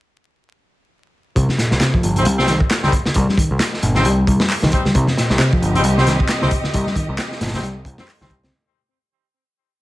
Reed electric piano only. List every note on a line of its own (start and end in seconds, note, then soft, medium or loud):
1.36 1.58 C3 medium
1.59 1.71 A#2 medium
1.81 1.93 C3 medium
1.94 2.25 F3 medium
2.26 2.38 G3 medium
2.39 2.47 C3 medium
2.49 2.59 D#3 medium
3.16 3.37 G3 medium
3.38 3.49 D#3 medium
3.83 3.94 A#2 medium
4.06 4.49 G3 medium
4.63 4.71 D#3 loud
4.86 4.93 G3 medium
4.95 5.16 C3 medium
5.17 5.29 A#2 medium
5.40 5.51 C3 loud
5.53 5.84 F3 medium
5.85 5.96 G3 medium
5.98 6.05 C3 medium
6.07 6.18 D#3 medium
6.74 6.95 G3 medium
6.97 7.07 D#3 medium
7.41 7.52 A#2 medium
7.64 7.75 G3 loud
8.21 8.30 D#3 medium
8.44 8.53 C4 medium